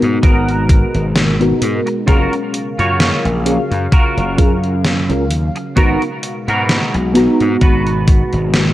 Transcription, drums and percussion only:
0.02 closed hi-hat
0.23 kick, closed hi-hat
0.49 closed hi-hat
0.69 kick, closed hi-hat
0.95 closed hi-hat
1.16 snare, closed hi-hat
1.41 closed hi-hat
1.62 closed hi-hat
1.87 closed hi-hat
2.08 kick, closed hi-hat
2.33 closed hi-hat
2.54 closed hi-hat
2.79 closed hi-hat
3.00 snare, closed hi-hat
3.25 closed hi-hat
3.46 closed hi-hat
3.72 closed hi-hat
3.92 kick, closed hi-hat
4.18 closed hi-hat
4.38 kick, closed hi-hat
4.64 closed hi-hat
4.85 snare, closed hi-hat
5.10 closed hi-hat
5.30 closed hi-hat
5.56 closed hi-hat
5.77 kick, closed hi-hat
6.02 closed hi-hat
6.23 closed hi-hat
6.48 closed hi-hat
6.69 snare, closed hi-hat
6.94 closed hi-hat
7.15 snare, closed hi-hat
7.40 closed hi-hat
7.61 kick, closed hi-hat
7.87 closed hi-hat
8.08 kick, closed hi-hat
8.33 closed hi-hat
8.54 snare, closed hi-hat

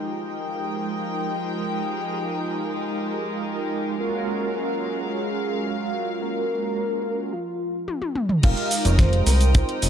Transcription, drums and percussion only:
7.88 high tom
8.02 high tom
8.15 mid tom
8.29 mid tom
8.43 kick, closed hi-hat, crash, shaker
8.57 closed hi-hat
8.71 open hi-hat, ride, shaker
8.85 closed hi-hat, shaker
8.99 kick, snare, closed hi-hat, shaker
9.13 closed hi-hat
9.27 open hi-hat, ride, shaker
9.41 closed hi-hat, shaker
9.55 kick, closed hi-hat, shaker
9.69 closed hi-hat
9.82 open hi-hat, ride, shaker

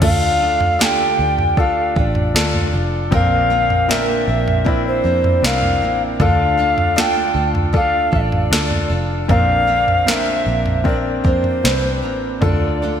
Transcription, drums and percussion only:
0.02 kick, floor tom, crash
0.61 floor tom
0.81 snare
1.38 floor tom
1.57 kick
1.96 kick
2.15 floor tom
2.36 snare
2.54 floor tom
3.12 kick, floor tom
3.70 floor tom
3.91 snare
4.48 floor tom
4.66 kick
5.24 floor tom
5.45 snare
5.63 floor tom
6.20 kick, floor tom
6.78 floor tom
6.98 snare
7.55 floor tom
7.74 kick
8.13 kick
8.32 floor tom
8.53 snare
8.71 floor tom
9.29 kick, floor tom
9.88 floor tom
10.08 snare
10.66 floor tom
10.85 kick
11.25 kick
11.44 floor tom
11.65 snare
12.42 kick, floor tom

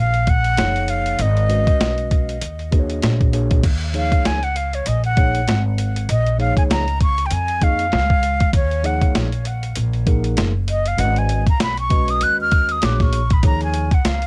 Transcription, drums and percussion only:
0.14 closed hi-hat
0.27 kick, closed hi-hat
0.44 closed hi-hat
0.57 snare, closed hi-hat
0.76 closed hi-hat
0.88 closed hi-hat
1.06 closed hi-hat
1.19 closed hi-hat
1.37 closed hi-hat
1.50 closed hi-hat
1.67 kick, closed hi-hat
1.81 snare, closed hi-hat
1.98 closed hi-hat
2.11 kick, closed hi-hat
2.29 closed hi-hat
2.41 closed hi-hat
2.59 closed hi-hat
2.72 kick, closed hi-hat
2.90 closed hi-hat
3.02 snare, closed hi-hat
3.21 kick, closed hi-hat
3.33 closed hi-hat
3.51 kick, closed hi-hat
3.64 kick, closed hi-hat, crash
3.81 closed hi-hat
3.94 closed hi-hat
4.12 kick, closed hi-hat
4.25 snare, closed hi-hat
4.43 closed hi-hat
4.56 closed hi-hat
4.74 closed hi-hat
4.86 closed hi-hat
5.04 closed hi-hat
5.17 kick, closed hi-hat
5.35 closed hi-hat
5.48 snare, closed hi-hat
5.78 closed hi-hat
5.96 closed hi-hat
6.09 closed hi-hat
6.26 closed hi-hat
6.40 closed hi-hat
6.57 kick, closed hi-hat
6.71 snare, closed hi-hat
6.88 closed hi-hat
7.01 kick, closed hi-hat
7.18 closed hi-hat
7.31 closed hi-hat
7.48 closed hi-hat
7.62 kick, closed hi-hat
7.79 closed hi-hat
7.92 snare, closed hi-hat
8.10 kick
8.23 closed hi-hat
8.40 kick, closed hi-hat
8.53 kick, closed hi-hat
8.71 closed hi-hat
8.84 closed hi-hat
9.01 kick, closed hi-hat
9.15 snare, closed hi-hat
9.32 closed hi-hat
9.45 closed hi-hat
9.63 closed hi-hat
9.76 closed hi-hat
9.94 closed hi-hat
10.07 kick, closed hi-hat
10.24 closed hi-hat
10.37 snare, closed hi-hat
10.68 closed hi-hat
10.85 closed hi-hat
10.98 closed hi-hat
11.16 closed hi-hat
11.29 closed hi-hat
11.46 kick, closed hi-hat
11.60 snare, closed hi-hat
11.77 closed hi-hat
11.90 kick, closed hi-hat
12.08 closed hi-hat
12.21 closed hi-hat
12.51 kick, closed hi-hat
12.69 closed hi-hat
12.82 snare, closed hi-hat
13.00 kick, snare, closed hi-hat
13.13 closed hi-hat
13.30 kick, closed hi-hat
13.43 kick, closed hi-hat
13.61 closed hi-hat
13.74 closed hi-hat
13.91 kick, closed hi-hat
14.05 snare, closed hi-hat
14.22 closed hi-hat

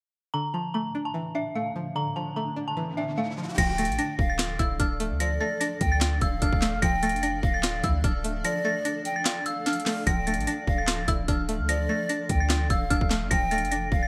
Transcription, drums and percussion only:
3.58 kick, closed hi-hat, crash
3.78 closed hi-hat
3.85 closed hi-hat
3.92 closed hi-hat
3.99 closed hi-hat
4.19 kick
4.39 snare, clap, closed hi-hat
4.59 kick, closed hi-hat
4.80 kick, closed hi-hat
5.00 closed hi-hat
5.20 closed hi-hat
5.61 closed hi-hat
5.81 kick, closed hi-hat
6.01 snare, clap, closed hi-hat
6.21 kick, closed hi-hat
6.42 kick, closed hi-hat
6.53 kick
6.62 snare, clap, closed hi-hat
6.82 kick, closed hi-hat
7.03 closed hi-hat
7.09 closed hi-hat
7.16 closed hi-hat
7.23 closed hi-hat
7.43 kick
7.63 snare, clap, closed hi-hat
7.84 kick, closed hi-hat
8.04 kick, closed hi-hat
8.24 closed hi-hat
8.45 closed hi-hat
8.85 closed hi-hat
9.05 closed hi-hat
9.25 snare, clap, closed hi-hat
9.46 closed hi-hat
9.66 snare, closed hi-hat
9.73 closed hi-hat
9.80 closed hi-hat
9.86 snare, clap, open hi-hat
10.07 kick, closed hi-hat
10.27 closed hi-hat
10.34 closed hi-hat
10.40 closed hi-hat
10.47 closed hi-hat
10.67 kick
10.87 snare, clap, closed hi-hat
11.08 kick, closed hi-hat
11.28 kick, closed hi-hat
11.49 closed hi-hat
11.69 closed hi-hat
12.09 closed hi-hat
12.29 kick, closed hi-hat
12.50 snare, clap, closed hi-hat
12.70 kick, closed hi-hat
12.90 kick, closed hi-hat
13.01 kick
13.10 snare, clap, closed hi-hat
13.31 kick, closed hi-hat
13.51 closed hi-hat
13.58 closed hi-hat
13.65 closed hi-hat
13.72 closed hi-hat
13.92 kick

